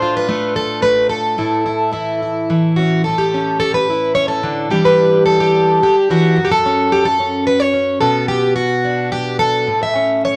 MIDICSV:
0, 0, Header, 1, 2, 480
1, 0, Start_track
1, 0, Tempo, 552995
1, 1200, Time_signature, 3, 2, 24, 8
1, 8993, End_track
2, 0, Start_track
2, 0, Title_t, "Twelve-string acoustic guitar"
2, 0, Program_c, 0, 25
2, 0, Note_on_c, 0, 45, 66
2, 0, Note_on_c, 0, 57, 48
2, 0, Note_on_c, 0, 62, 47
2, 0, Note_on_c, 0, 72, 101
2, 19, Note_on_c, 0, 65, 54
2, 136, Note_off_c, 0, 72, 0
2, 145, Note_on_c, 0, 71, 108
2, 241, Note_off_c, 0, 65, 0
2, 245, Note_off_c, 0, 57, 0
2, 248, Note_on_c, 0, 57, 64
2, 254, Note_on_c, 0, 65, 51
2, 482, Note_off_c, 0, 71, 0
2, 486, Note_on_c, 0, 69, 91
2, 709, Note_off_c, 0, 45, 0
2, 712, Note_off_c, 0, 69, 0
2, 712, Note_on_c, 0, 45, 68
2, 715, Note_on_c, 0, 71, 93
2, 946, Note_off_c, 0, 71, 0
2, 950, Note_on_c, 0, 69, 75
2, 1174, Note_off_c, 0, 65, 0
2, 1180, Note_off_c, 0, 62, 0
2, 1194, Note_off_c, 0, 45, 0
2, 1197, Note_on_c, 0, 45, 72
2, 1203, Note_on_c, 0, 64, 52
2, 1429, Note_off_c, 0, 64, 0
2, 1439, Note_on_c, 0, 64, 50
2, 1668, Note_off_c, 0, 57, 0
2, 1669, Note_off_c, 0, 64, 0
2, 1672, Note_on_c, 0, 52, 68
2, 1679, Note_on_c, 0, 64, 47
2, 1922, Note_off_c, 0, 64, 0
2, 1932, Note_on_c, 0, 64, 46
2, 2157, Note_off_c, 0, 52, 0
2, 2168, Note_on_c, 0, 52, 62
2, 2394, Note_off_c, 0, 69, 0
2, 2397, Note_on_c, 0, 66, 72
2, 2422, Note_on_c, 0, 61, 44
2, 2621, Note_off_c, 0, 45, 0
2, 2623, Note_off_c, 0, 52, 0
2, 2627, Note_off_c, 0, 64, 0
2, 2629, Note_off_c, 0, 61, 0
2, 2636, Note_off_c, 0, 66, 0
2, 2639, Note_on_c, 0, 69, 83
2, 2654, Note_on_c, 0, 45, 60
2, 2762, Note_on_c, 0, 67, 78
2, 2900, Note_on_c, 0, 61, 43
2, 3112, Note_off_c, 0, 69, 0
2, 3123, Note_on_c, 0, 69, 90
2, 3244, Note_off_c, 0, 69, 0
2, 3247, Note_on_c, 0, 71, 92
2, 3369, Note_off_c, 0, 67, 0
2, 3385, Note_on_c, 0, 64, 47
2, 3598, Note_off_c, 0, 71, 0
2, 3601, Note_on_c, 0, 73, 98
2, 3613, Note_on_c, 0, 49, 54
2, 3712, Note_off_c, 0, 73, 0
2, 3715, Note_on_c, 0, 69, 84
2, 3844, Note_off_c, 0, 49, 0
2, 3847, Note_on_c, 0, 50, 64
2, 4063, Note_off_c, 0, 45, 0
2, 4066, Note_off_c, 0, 61, 0
2, 4067, Note_off_c, 0, 64, 0
2, 4080, Note_off_c, 0, 50, 0
2, 4082, Note_off_c, 0, 69, 0
2, 4084, Note_on_c, 0, 52, 67
2, 4088, Note_on_c, 0, 55, 44
2, 4091, Note_on_c, 0, 67, 73
2, 4099, Note_on_c, 0, 62, 41
2, 4211, Note_on_c, 0, 71, 80
2, 4321, Note_off_c, 0, 62, 0
2, 4331, Note_on_c, 0, 62, 50
2, 4560, Note_off_c, 0, 71, 0
2, 4563, Note_on_c, 0, 69, 89
2, 4679, Note_off_c, 0, 67, 0
2, 4690, Note_on_c, 0, 67, 80
2, 4806, Note_off_c, 0, 62, 0
2, 4817, Note_on_c, 0, 62, 50
2, 5045, Note_off_c, 0, 52, 0
2, 5049, Note_off_c, 0, 67, 0
2, 5055, Note_on_c, 0, 50, 59
2, 5063, Note_on_c, 0, 67, 79
2, 5165, Note_off_c, 0, 69, 0
2, 5287, Note_off_c, 0, 55, 0
2, 5291, Note_off_c, 0, 50, 0
2, 5297, Note_on_c, 0, 52, 62
2, 5302, Note_on_c, 0, 66, 78
2, 5501, Note_off_c, 0, 62, 0
2, 5522, Note_on_c, 0, 42, 65
2, 5531, Note_off_c, 0, 52, 0
2, 5531, Note_off_c, 0, 67, 0
2, 5596, Note_on_c, 0, 67, 69
2, 5650, Note_off_c, 0, 67, 0
2, 5652, Note_off_c, 0, 66, 0
2, 5655, Note_on_c, 0, 69, 84
2, 5779, Note_on_c, 0, 61, 47
2, 6008, Note_on_c, 0, 67, 92
2, 6113, Note_off_c, 0, 69, 0
2, 6122, Note_off_c, 0, 67, 0
2, 6123, Note_on_c, 0, 69, 96
2, 6240, Note_off_c, 0, 61, 0
2, 6250, Note_on_c, 0, 61, 47
2, 6477, Note_off_c, 0, 69, 0
2, 6482, Note_on_c, 0, 71, 105
2, 6596, Note_off_c, 0, 71, 0
2, 6596, Note_on_c, 0, 73, 88
2, 6706, Note_off_c, 0, 61, 0
2, 6716, Note_on_c, 0, 61, 52
2, 6926, Note_off_c, 0, 61, 0
2, 6946, Note_off_c, 0, 73, 0
2, 6949, Note_on_c, 0, 69, 84
2, 6952, Note_off_c, 0, 42, 0
2, 6953, Note_on_c, 0, 47, 68
2, 7186, Note_off_c, 0, 69, 0
2, 7189, Note_on_c, 0, 67, 92
2, 7423, Note_off_c, 0, 67, 0
2, 7427, Note_on_c, 0, 66, 94
2, 7679, Note_on_c, 0, 62, 47
2, 7912, Note_off_c, 0, 66, 0
2, 7915, Note_on_c, 0, 67, 103
2, 8149, Note_off_c, 0, 67, 0
2, 8152, Note_on_c, 0, 69, 96
2, 8376, Note_off_c, 0, 62, 0
2, 8394, Note_on_c, 0, 45, 63
2, 8402, Note_off_c, 0, 47, 0
2, 8527, Note_off_c, 0, 69, 0
2, 8531, Note_on_c, 0, 76, 95
2, 8642, Note_on_c, 0, 61, 42
2, 8892, Note_off_c, 0, 76, 0
2, 8896, Note_on_c, 0, 73, 105
2, 8993, Note_off_c, 0, 45, 0
2, 8993, Note_off_c, 0, 61, 0
2, 8993, Note_off_c, 0, 73, 0
2, 8993, End_track
0, 0, End_of_file